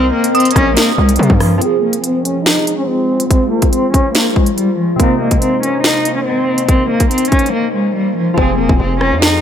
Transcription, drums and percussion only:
0.24 closed hi-hat
0.35 closed hi-hat
0.40 closed hi-hat
0.45 closed hi-hat
0.51 closed hi-hat
0.56 kick, cross-stick, closed hi-hat
0.77 snare, closed hi-hat
1.09 closed hi-hat
1.16 closed hi-hat
1.23 closed hi-hat
1.30 kick
1.40 cross-stick, open hi-hat
1.62 closed hi-hat
1.93 closed hi-hat
2.04 closed hi-hat
2.25 closed hi-hat
2.46 snare
2.67 closed hi-hat
3.20 closed hi-hat
3.31 kick, closed hi-hat
3.62 kick, closed hi-hat
3.73 closed hi-hat
3.94 kick, closed hi-hat
4.15 snare, closed hi-hat
4.36 kick
4.46 closed hi-hat
4.58 closed hi-hat
5.00 kick, closed hi-hat
5.31 kick, closed hi-hat
5.42 closed hi-hat
5.63 closed hi-hat
5.84 snare
6.05 closed hi-hat
6.58 closed hi-hat
6.69 kick, closed hi-hat
7.00 kick, closed hi-hat
7.11 closed hi-hat
7.18 closed hi-hat
7.25 closed hi-hat
7.32 kick, closed hi-hat
7.39 closed hi-hat
7.46 closed hi-hat
8.38 kick
8.69 kick
9.01 cross-stick
9.22 snare

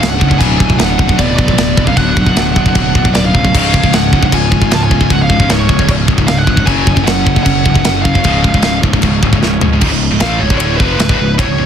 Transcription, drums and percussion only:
0.03 snare, china
0.21 kick
0.31 kick
0.41 kick, china
0.60 kick
0.70 kick
0.79 snare, china
0.99 kick
1.09 kick
1.19 kick, china
1.39 kick
1.48 kick
1.58 snare, china
1.77 kick
1.87 kick
1.97 kick, china
2.17 kick
2.26 kick
2.36 snare, china
2.56 kick
2.66 kick
2.75 kick, china
2.95 kick
3.05 kick
3.15 snare, china
3.35 kick
3.45 kick
3.55 kick, china, crash
3.74 kick
3.84 kick
3.93 snare, china
4.13 kick
4.23 kick
4.32 kick, china
4.52 kick
4.62 kick
4.71 snare, china
4.91 kick
5.01 kick
5.10 kick, china
5.30 kick
5.40 kick
5.49 snare, china
5.69 kick
5.79 kick
5.88 kick, china
6.08 kick
6.18 kick
6.28 snare, china
6.47 kick
6.57 kick
6.67 kick, china
6.87 kick
6.97 kick
7.07 snare, china
7.27 kick
7.36 kick
7.46 kick, china
7.66 kick
7.75 kick
7.84 snare, china
8.05 kick
8.15 kick
8.24 kick, china
8.44 kick
8.54 kick
8.62 snare, china
8.83 kick
8.93 kick
9.02 kick, china
9.23 kick
9.33 kick
9.43 snare
9.61 floor tom
9.81 kick, crash
10.20 snare, ride bell
10.50 kick
10.60 ride bell
10.80 kick
11.00 snare, ride bell
11.09 kick
11.39 kick, ride bell

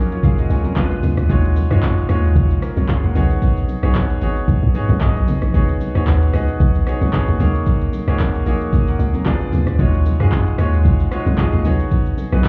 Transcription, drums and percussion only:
0.12 shaker
0.23 kick, low conga, shaker
0.38 shaker
0.50 open hi-hat, shaker
0.64 high bongo, low bongo, shaker
0.76 kick, clap, high bongo, shaker
0.91 shaker
1.03 open hi-hat, high bongo, low bongo, low conga, shaker
1.17 cross-stick, shaker
1.30 kick, low conga, shaker
1.44 shaker
1.56 open hi-hat, low bongo, shaker
1.71 cross-stick, shaker
1.83 kick, clap, high bongo, shaker
1.97 shaker
2.09 cross-stick, open hi-hat, shaker
2.24 shaker
2.36 kick, low conga, shaker
2.50 shaker
2.62 cross-stick, open hi-hat, shaker
2.77 high bongo, low bongo, shaker
2.89 kick, clap, high bongo, shaker
3.03 shaker
3.15 open hi-hat, high bongo, low bongo, low conga, shaker
3.30 shaker
3.42 kick, low conga, shaker
3.56 shaker
3.68 open hi-hat, low bongo, shaker
3.83 cross-stick, shaker
3.95 kick, clap, high bongo, shaker
4.10 shaker
4.21 open hi-hat, shaker
4.36 shaker
4.48 kick, low conga, shaker
4.63 mid tom
4.75 open hi-hat, shaker
4.89 mid tom, high bongo, low bongo, shaker
5.01 kick, clap, high bongo, shaker
5.16 shaker
5.28 open hi-hat, high bongo, low bongo, low conga, shaker
5.42 cross-stick, shaker
5.54 kick, low conga, shaker
5.69 shaker
5.80 open hi-hat, low bongo, shaker
5.95 cross-stick, shaker
6.07 kick, clap, high bongo, shaker
6.22 shaker
6.33 cross-stick, open hi-hat, shaker
6.48 shaker
6.60 kick, low conga, shaker
6.75 shaker
6.87 cross-stick, open hi-hat, shaker
7.01 high bongo, low bongo, shaker
7.13 kick, clap, high bongo, shaker
7.28 shaker
7.40 open hi-hat, high bongo, low bongo, low conga, shaker
7.54 shaker
7.66 kick, low conga, shaker
7.81 shaker
7.93 open hi-hat, low bongo, shaker
8.08 cross-stick, shaker
8.19 kick, clap, high bongo, shaker
8.34 shaker
8.46 open hi-hat, shaker
8.61 shaker
8.73 kick, low conga, shaker
8.87 shaker
8.99 open hi-hat, shaker
9.14 high bongo, low bongo, shaker
9.26 kick, clap, high bongo, shaker
9.40 shaker
9.52 open hi-hat, high bongo, low bongo, low conga, shaker
9.67 cross-stick, shaker
9.79 kick, low conga, shaker
9.94 shaker
10.05 open hi-hat, low bongo, shaker
10.20 cross-stick, shaker
10.32 kick, clap, high bongo, shaker
10.47 shaker
10.58 cross-stick, open hi-hat, shaker
10.73 shaker
10.85 kick, low conga, shaker
11.00 shaker
11.12 cross-stick, open hi-hat, shaker
11.26 high bongo, low bongo, shaker
11.38 kick, clap, high bongo, shaker
11.53 shaker
11.65 open hi-hat, high bongo, low bongo, low conga, shaker
11.79 shaker
11.91 kick, low conga, shaker
12.06 shaker
12.17 open hi-hat, low bongo, shaker
12.32 cross-stick, low bongo, shaker
12.44 kick, clap, high bongo, shaker

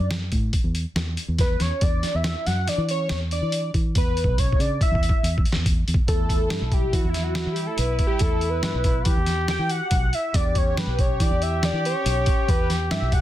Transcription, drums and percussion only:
0.11 snare, closed hi-hat
0.32 kick, closed hi-hat
0.53 kick, closed hi-hat
0.75 closed hi-hat
0.96 snare, closed hi-hat
1.17 closed hi-hat
1.38 kick, snare, closed hi-hat
1.60 snare, closed hi-hat
1.81 kick, closed hi-hat
2.03 snare, closed hi-hat
2.24 snare, closed hi-hat
2.46 snare, closed hi-hat
2.68 snare, closed hi-hat
2.89 closed hi-hat
3.09 snare, closed hi-hat
3.31 closed hi-hat
3.52 closed hi-hat
3.74 kick, closed hi-hat
3.95 kick, closed hi-hat
4.17 closed hi-hat
4.24 kick
4.38 kick, closed hi-hat
4.53 kick
4.60 closed hi-hat
4.81 kick, closed hi-hat
4.95 kick
5.03 closed hi-hat
5.09 kick
5.24 closed hi-hat
5.38 kick
5.45 closed hi-hat
5.52 snare
5.66 kick, closed hi-hat
5.88 closed hi-hat
5.94 kick
6.08 kick, closed hi-hat
6.29 kick, closed hi-hat
6.50 snare, closed hi-hat
6.72 kick, closed hi-hat
6.93 kick, closed hi-hat
7.14 snare, closed hi-hat
7.35 snare, closed hi-hat
7.56 closed hi-hat
7.78 closed hi-hat
7.99 kick, closed hi-hat
8.19 kick, closed hi-hat
8.41 closed hi-hat
8.63 snare, closed hi-hat
8.84 kick, closed hi-hat
9.05 kick, closed hi-hat
9.26 snare, closed hi-hat
9.48 snare, closed hi-hat
9.69 closed hi-hat
9.91 kick, closed hi-hat
10.13 closed hi-hat
10.34 kick, closed hi-hat
10.55 kick, closed hi-hat
10.77 snare, closed hi-hat
10.99 kick, closed hi-hat
11.20 kick, closed hi-hat
11.42 closed hi-hat
11.63 snare, closed hi-hat
11.85 closed hi-hat
12.06 closed hi-hat
12.26 kick, closed hi-hat
12.48 kick, closed hi-hat
12.70 snare, closed hi-hat
12.91 snare, closed hi-hat
13.12 kick, closed hi-hat

